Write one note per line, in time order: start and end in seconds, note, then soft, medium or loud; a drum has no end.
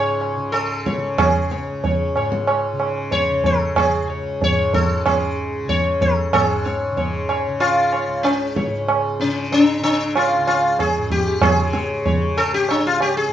0.00 1.55 C#2 medium
0.00 2.14 G#2 medium
0.00 0.37 C#3 medium
0.00 0.56 C#5 medium
0.21 tabla na medium
0.37 0.96 C#3 medium
0.52 1.14 A4 medium
0.52 tabla na medium
0.86 1.17 C#5 soft
0.86 tabla ke medium
0.96 2.73 C#3 medium
1.18 2.11 G#4 medium
1.18 tabla na loud
1.18 tabla ge medium
1.51 3.88 C#2 medium
1.51 1.82 C#5 soft
1.51 tabla te medium
1.84 2.14 C#5 soft
1.84 tabla tin medium
1.84 tabla ge medium
2.15 4.47 G#2 medium
2.15 2.46 C#5 soft
2.15 tabla na medium
2.32 tabla ke medium
2.47 2.78 C#5 soft
2.47 tabla na medium
2.73 3.31 C#3 medium
2.80 tabla na medium
3.11 3.45 C#5 medium
3.11 tabla tin medium
3.11 tabla ge medium
3.31 5.05 C#3 medium
3.44 3.77 A4 medium
3.44 tabla tin medium
3.44 tabla ge medium
3.76 4.07 G#4 medium
3.76 tabla na medium
3.76 tabla ge medium
3.88 8.07 C#2 medium
4.10 4.39 C#5 soft
4.42 4.75 C#5 medium
4.42 tabla tin medium
4.42 tabla ge medium
4.47 6.33 G#2 medium
4.74 5.06 A4 medium
4.74 tabla tin medium
4.74 tabla ge medium
5.05 5.64 C#3 medium
5.05 5.36 G#4 medium
5.05 tabla na medium
5.05 tabla ge medium
5.64 6.91 C#3 medium
5.69 6.02 C#5 medium
5.69 tabla tin medium
5.69 tabla ge medium
6.01 6.33 A4 medium
6.01 tabla tin medium
6.01 tabla ge medium
6.33 8.65 G#2 medium
6.33 7.25 G#4 medium
6.33 6.63 C#5 soft
6.33 tabla na loud
6.33 tabla ge medium
6.65 6.95 C#5 soft
6.65 tabla te medium
6.91 7.48 C#3 medium
6.97 7.27 C#5 soft
6.97 tabla tin medium
6.97 tabla ge medium
7.29 7.59 C#5 soft
7.29 tabla na medium
7.48 9.23 C#3 medium
7.60 8.26 F4 medium
7.60 tabla na medium
7.92 8.22 C#5 soft
7.92 tabla na medium
8.08 10.38 C#2 medium
8.23 8.84 C#4 medium
8.23 tabla na medium
8.56 8.86 C#5 soft
8.56 tabla ke medium
8.65 10.97 G#2 medium
8.88 tabla na medium
9.20 9.80 C#3 medium
9.20 9.52 C#4 medium
9.20 tabla te medium
9.52 9.82 D4 medium
9.52 tabla tin medium
9.80 11.55 C#3 medium
9.80 10.13 D4 medium
9.80 tabla na medium
10.15 10.46 F4 medium
10.15 tabla na medium
10.39 12.70 C#2 medium
10.47 10.80 F4 medium
10.47 tabla na medium
10.79 11.11 G#4 medium
10.79 tabla na medium
10.79 tabla ge medium
10.97 13.28 G#2 medium
11.10 11.42 G4 medium
11.10 tabla ge medium
11.41 12.37 G#4 medium
11.41 tabla na loud
11.41 tabla ge loud
11.55 12.11 C#3 medium
11.73 12.03 C#5 soft
11.73 tabla te medium
12.05 12.35 C#5 soft
12.05 tabla tin medium
12.05 tabla ge medium
12.11 13.33 C#3 medium
12.37 12.54 A4 loud
12.37 tabla na medium
12.54 12.70 G4 loud
12.69 13.33 C#2 medium
12.69 12.86 D4 medium
12.69 tabla na medium
12.87 13.02 F4 medium
13.00 13.16 G4 medium
13.00 tabla na medium
13.17 13.33 G#4 medium
13.28 13.33 G#2 medium